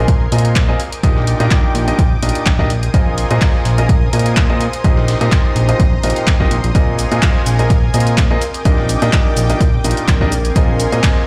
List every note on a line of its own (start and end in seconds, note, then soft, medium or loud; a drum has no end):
0.00 0.27 A#1 loud
0.00 0.11 A#2 medium
0.00 0.11 C4 medium
0.00 0.11 F4 medium
0.00 0.11 G#4 medium
0.00 0.11 A#4 medium
0.00 0.78 A#4 medium
0.00 0.11 D#5 medium
0.00 0.78 G#5 medium
0.00 0.80 G#5 medium
0.00 0.78 C6 medium
0.00 11.27 D#6 medium
0.08 kick loud
0.08 closed hi-hat medium
0.32 0.75 A#2 medium
0.32 0.66 A#2 medium
0.32 0.66 C4 medium
0.32 0.66 F4 medium
0.32 0.66 G#4 medium
0.32 0.66 A#4 medium
0.32 0.66 D#5 medium
0.32 closed hi-hat medium
0.32 open hi-hat loud
0.38 closed hi-hat medium
0.45 closed hi-hat medium
0.45 closed hi-hat soft
0.56 kick loud
0.56 snare loud
0.56 clap loud
0.56 closed hi-hat medium
0.69 0.78 C4 medium
0.69 0.78 F4 medium
0.69 0.78 G#4 medium
0.69 0.78 A#4 medium
0.69 0.78 D#5 loud
0.80 2.68 G5 medium
0.80 2.68 D6 medium
0.80 closed hi-hat medium
0.80 open hi-hat medium
0.92 closed hi-hat medium
0.92 closed hi-hat soft
1.03 1.35 A#1 medium
1.03 1.37 A#2 medium
1.03 1.37 D4 medium
1.03 1.37 D#4 medium
1.03 1.37 G4 medium
1.03 1.37 A#4 medium
1.03 1.37 D#5 medium
1.03 kick loud
1.03 closed hi-hat medium
1.16 snare soft
1.27 closed hi-hat medium
1.27 open hi-hat loud
1.40 1.48 A#2 loud
1.40 1.85 A#2 medium
1.40 1.85 D4 medium
1.40 1.85 D#4 medium
1.40 1.85 G4 medium
1.40 1.85 A#4 medium
1.40 1.85 D#5 loud
1.40 2.70 G5 medium
1.40 snare soft
1.40 closed hi-hat medium
1.51 kick loud
1.51 snare loud
1.51 clap loud
1.51 closed hi-hat medium
1.75 1.93 A#1 loud
1.75 closed hi-hat medium
1.75 open hi-hat medium
1.88 2.01 A#2 medium
1.88 2.01 D4 medium
1.88 2.01 D#4 medium
1.88 2.01 G4 medium
1.88 2.01 A#4 medium
1.88 2.01 D#5 medium
1.88 closed hi-hat medium
1.88 closed hi-hat soft
1.99 2.17 A#1 loud
1.99 kick loud
1.99 closed hi-hat medium
2.22 2.32 A#1 medium
2.22 2.56 A#2 medium
2.22 2.56 D4 medium
2.22 2.56 D#4 medium
2.22 2.56 G4 medium
2.22 2.56 A#4 medium
2.22 2.56 D#5 medium
2.22 closed hi-hat medium
2.22 open hi-hat loud
2.29 closed hi-hat medium
2.35 closed hi-hat medium
2.35 closed hi-hat soft
2.46 2.89 A#1 loud
2.46 kick loud
2.46 snare loud
2.46 clap loud
2.46 closed hi-hat medium
2.59 2.69 D4 medium
2.59 2.69 D#4 medium
2.59 2.69 G4 medium
2.59 2.69 A#4 medium
2.59 2.69 D#5 loud
2.59 kick medium
2.59 snare soft
2.70 4.82 A#4 medium
2.70 4.82 G#5 medium
2.70 8.38 C6 medium
2.70 closed hi-hat medium
2.70 open hi-hat medium
2.83 closed hi-hat soft
2.91 3.25 A#1 medium
2.91 3.27 A#2 medium
2.91 3.28 C4 medium
2.91 3.27 F4 medium
2.91 3.27 G#4 medium
2.91 3.28 A#4 medium
2.91 9.01 C5 medium
2.91 3.27 D#5 medium
2.91 4.84 G#5 medium
2.91 kick loud
2.91 closed hi-hat medium
3.18 closed hi-hat medium
3.18 open hi-hat loud
3.31 3.39 A#2 loud
3.31 3.75 A#2 medium
3.31 3.75 C4 medium
3.31 3.75 F4 medium
3.31 3.75 G#4 medium
3.31 3.75 A#4 medium
3.31 3.75 D#5 medium
3.31 closed hi-hat soft
3.41 kick loud
3.41 snare loud
3.41 clap loud
3.41 closed hi-hat medium
3.41 open hi-hat medium
3.54 snare soft
3.65 4.08 A#1 loud
3.65 snare soft
3.65 closed hi-hat medium
3.65 open hi-hat medium
3.78 3.92 A#2 medium
3.78 3.92 C4 medium
3.78 3.92 F4 medium
3.78 3.92 G#4 medium
3.78 3.92 A#4 medium
3.78 3.92 D#5 medium
3.78 closed hi-hat soft
3.89 kick loud
3.89 closed hi-hat medium
4.13 4.68 A#2 medium
4.13 4.47 A#2 medium
4.13 4.47 C4 medium
4.13 4.47 F4 medium
4.13 4.47 G#4 medium
4.13 4.47 A#4 medium
4.13 4.47 D#5 medium
4.13 closed hi-hat medium
4.13 open hi-hat loud
4.19 closed hi-hat medium
4.26 closed hi-hat soft
4.37 kick loud
4.37 snare loud
4.37 clap loud
4.37 closed hi-hat medium
4.50 4.63 A#2 medium
4.50 4.63 C4 medium
4.50 4.63 F4 medium
4.50 4.63 G#4 medium
4.50 4.63 A#4 medium
4.50 4.63 D#5 loud
4.61 closed hi-hat medium
4.61 open hi-hat loud
4.73 closed hi-hat medium
4.73 closed hi-hat soft
4.84 5.16 A#1 medium
4.84 5.18 A#2 medium
4.84 11.27 C4 medium
4.84 5.18 C4 medium
4.84 5.18 D#4 medium
4.84 5.18 G4 medium
4.84 5.18 A#4 medium
4.84 5.18 D#5 medium
4.84 6.73 A#5 medium
4.84 kick loud
4.84 closed hi-hat medium
4.97 snare soft
5.08 11.27 A#4 medium
5.08 snare loud
5.08 open hi-hat loud
5.08 open hi-hat medium
5.21 5.66 A#2 medium
5.21 5.29 A#2 loud
5.21 5.66 C4 medium
5.21 5.66 D#4 medium
5.21 5.66 G4 medium
5.21 5.66 A#4 medium
5.21 5.66 D#5 loud
5.21 snare soft
5.21 closed hi-hat soft
5.32 kick loud
5.32 snare loud
5.32 clap loud
5.32 closed hi-hat medium
5.56 5.74 A#1 loud
5.56 closed hi-hat medium
5.56 open hi-hat medium
5.69 5.82 A#2 medium
5.69 5.82 C4 medium
5.69 5.82 D#4 medium
5.69 5.82 G4 medium
5.69 5.82 A#4 medium
5.69 5.82 D#5 medium
5.69 6.75 G5 medium
5.69 closed hi-hat soft
5.80 5.98 A#1 medium
5.80 kick loud
5.80 closed hi-hat medium
6.03 6.13 A#1 medium
6.03 6.37 A#2 medium
6.03 6.37 C4 medium
6.03 6.37 D#4 medium
6.03 6.37 G4 medium
6.03 6.37 A#4 medium
6.03 6.37 D#5 medium
6.03 closed hi-hat medium
6.03 open hi-hat loud
6.10 closed hi-hat medium
6.16 closed hi-hat soft
6.27 kick loud
6.27 snare loud
6.27 clap loud
6.27 closed hi-hat medium
6.40 6.48 A#1 medium
6.40 6.53 A#2 medium
6.40 6.53 C4 medium
6.40 6.53 D#4 medium
6.40 6.53 G4 medium
6.40 6.53 A#4 medium
6.40 6.53 D#5 loud
6.40 kick medium
6.40 snare soft
6.51 6.61 A#1 medium
6.51 closed hi-hat medium
6.51 open hi-hat loud
6.64 6.72 A#1 loud
6.64 closed hi-hat medium
6.75 7.06 A#1 loud
6.75 7.08 A#2 medium
6.75 7.08 C4 medium
6.75 7.08 F4 medium
6.75 7.08 G#4 medium
6.75 8.40 A#4 medium
6.75 7.08 A#4 medium
6.75 7.09 D#5 medium
6.75 8.40 G#5 medium
6.75 kick loud
6.75 closed hi-hat medium
6.75 shaker soft
6.99 closed hi-hat medium
6.99 open hi-hat loud
6.99 shaker medium
7.12 7.56 A#2 medium
7.12 7.20 A#2 medium
7.12 7.56 C4 medium
7.12 7.56 F4 medium
7.12 7.56 G#4 medium
7.12 7.56 A#4 medium
7.12 7.56 D#5 medium
7.12 closed hi-hat soft
7.12 shaker soft
7.22 kick loud
7.22 snare loud
7.22 clap loud
7.22 closed hi-hat medium
7.22 open hi-hat medium
7.22 shaker soft
7.35 snare soft
7.39 8.42 G#5 medium
7.46 7.89 A#1 loud
7.46 snare soft
7.46 closed hi-hat medium
7.46 open hi-hat medium
7.46 shaker medium
7.59 7.72 A#2 medium
7.59 7.72 C4 medium
7.59 7.72 F4 medium
7.59 7.72 G#4 medium
7.59 7.72 A#4 medium
7.59 7.72 D#5 medium
7.59 closed hi-hat soft
7.59 shaker soft
7.70 kick loud
7.70 closed hi-hat medium
7.70 shaker soft
7.94 8.37 A#2 medium
7.94 8.27 A#2 medium
7.94 8.27 C4 medium
7.94 8.27 F4 medium
7.94 8.27 G#4 medium
7.94 8.27 A#4 medium
7.94 8.27 D#5 medium
7.94 closed hi-hat medium
7.94 open hi-hat loud
7.94 shaker medium
8.00 closed hi-hat medium
8.07 closed hi-hat soft
8.07 shaker soft
8.18 kick loud
8.18 snare loud
8.18 clap loud
8.18 closed hi-hat medium
8.18 shaker soft
8.31 8.40 C4 medium
8.31 8.40 F4 medium
8.31 8.40 G#4 medium
8.31 8.40 A#4 medium
8.31 8.40 D#5 loud
8.41 10.30 G5 medium
8.41 10.30 D6 medium
8.41 closed hi-hat medium
8.41 open hi-hat medium
8.41 shaker medium
8.54 closed hi-hat soft
8.54 closed hi-hat medium
8.54 shaker soft
8.65 8.97 A#1 loud
8.65 8.99 A#2 medium
8.65 8.99 D4 medium
8.65 8.99 D#4 medium
8.65 8.99 G4 medium
8.65 8.99 A#4 medium
8.65 8.99 D#5 medium
8.65 kick loud
8.65 closed hi-hat medium
8.65 shaker soft
8.78 snare soft
8.89 closed hi-hat medium
8.89 open hi-hat loud
8.89 shaker medium
9.02 9.10 A#2 loud
9.02 9.47 A#2 medium
9.02 9.47 D4 medium
9.02 9.47 D#4 medium
9.02 9.47 G4 medium
9.02 9.47 A#4 medium
9.02 9.47 D#5 loud
9.02 snare soft
9.02 closed hi-hat medium
9.02 shaker soft
9.13 kick loud
9.13 snare loud
9.13 clap loud
9.13 closed hi-hat medium
9.13 shaker soft
9.28 10.32 G5 medium
9.37 9.55 A#1 loud
9.37 closed hi-hat medium
9.37 open hi-hat medium
9.37 shaker medium
9.50 9.63 A#2 medium
9.50 9.63 D4 medium
9.50 9.63 D#4 medium
9.50 9.63 G4 medium
9.50 9.63 A#4 medium
9.50 9.63 D#5 medium
9.50 closed hi-hat medium
9.50 closed hi-hat soft
9.50 shaker soft
9.61 9.79 A#1 loud
9.61 kick loud
9.61 closed hi-hat medium
9.61 shaker soft
9.84 9.94 A#1 medium
9.84 10.18 A#2 medium
9.84 10.18 D4 medium
9.84 10.18 D#4 medium
9.84 10.18 G4 medium
9.84 10.18 A#4 medium
9.84 10.18 D#5 medium
9.84 closed hi-hat medium
9.84 open hi-hat loud
9.84 shaker medium
9.91 closed hi-hat medium
9.97 closed hi-hat soft
9.97 shaker soft
10.08 10.51 A#1 loud
10.08 kick loud
10.08 snare loud
10.08 clap loud
10.08 closed hi-hat medium
10.08 shaker soft
10.21 10.31 D4 medium
10.21 10.31 D#4 medium
10.21 10.31 G4 medium
10.21 10.31 A#4 medium
10.21 10.31 D#5 loud
10.21 kick medium
10.21 snare soft
10.32 11.27 A#4 medium
10.32 11.27 G#5 medium
10.32 11.27 C6 medium
10.32 closed hi-hat medium
10.32 open hi-hat medium
10.32 shaker medium
10.45 closed hi-hat medium
10.45 shaker soft
10.56 10.87 A#1 loud
10.56 10.89 A#2 medium
10.56 10.89 C4 medium
10.56 10.89 F4 medium
10.56 10.89 G#4 medium
10.56 10.89 A#4 medium
10.56 10.89 D#5 medium
10.56 kick loud
10.56 closed hi-hat medium
10.56 shaker soft
10.73 11.27 G#5 medium
10.80 closed hi-hat medium
10.80 open hi-hat medium
10.80 shaker medium
10.92 11.27 A#2 medium
10.92 11.01 A#2 loud
10.92 11.27 C4 medium
10.92 11.27 F4 medium
10.92 11.27 G#4 medium
10.92 11.27 A#4 medium
10.92 11.27 D#5 loud
10.92 closed hi-hat medium
10.92 shaker soft
11.03 kick loud
11.03 snare loud
11.03 clap loud
11.03 closed hi-hat medium
11.03 open hi-hat medium
11.03 shaker soft
11.09 11.27 C5 medium
11.16 snare soft